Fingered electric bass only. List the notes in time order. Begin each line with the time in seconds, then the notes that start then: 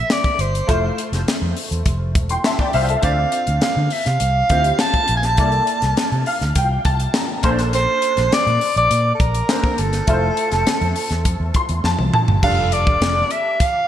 0.39 G1
0.69 F1
1.12 F1
1.42 F2
1.71 E2
1.86 F1
2.15 E1
2.74 C2
3.03 D2
3.48 D2
3.76 D3
4.06 C3
4.21 C2
4.50 D2
5.09 A#1
5.38 C2
5.83 C2
6.12 C3
6.41 D2
6.55 C2
6.85 C2
7.44 A#1
8.18 A#1
8.47 A#2
8.76 A#1
8.91 A#2
9.20 A#1
9.79 G1
10.08 F1
10.52 F1
10.81 F2
11.11 E2
11.25 F2
11.40 E2
11.69 E2
11.84 F2
11.99 C2
12.28 G1
12.43 F1
12.87 E1
13.01 F1